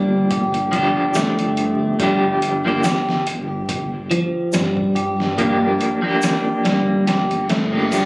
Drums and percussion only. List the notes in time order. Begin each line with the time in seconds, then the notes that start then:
0.31 kick, closed hi-hat
0.54 closed hi-hat
0.73 kick, closed hi-hat
1.14 snare, closed hi-hat, shaker
1.39 closed hi-hat
1.57 closed hi-hat
2.00 kick, closed hi-hat
2.42 closed hi-hat
2.84 snare, closed hi-hat, shaker
3.09 snare
3.27 closed hi-hat
3.69 kick, closed hi-hat
4.11 closed hi-hat
4.53 snare, closed hi-hat, shaker
4.77 kick
4.96 closed hi-hat
5.20 snare
5.38 kick, closed hi-hat
5.81 closed hi-hat
6.22 snare, closed hi-hat, shaker
6.65 snare, closed hi-hat
7.07 snare, closed hi-hat
7.31 closed hi-hat
7.50 snare, closed hi-hat
7.92 closed hi-hat, shaker